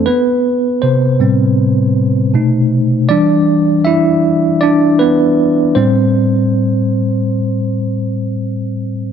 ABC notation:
X:1
M:4/4
L:1/8
Q:"Swing 16ths" 1/4=79
K:Am
V:1 name="Tine electric piano"
[B,B]2 [C,c]4- [C,c] z | d2 [Ee]2 [Dd] [B,B]2 c- | c3 z4 z |]
V:2 name="Tine electric piano" clef=bass
z3 [A,,G,C] z2 [B,,A,^D]2 | [E,G,D] z6 [A,,G,C]- | [A,,G,C]6- [A,,G,C] z |]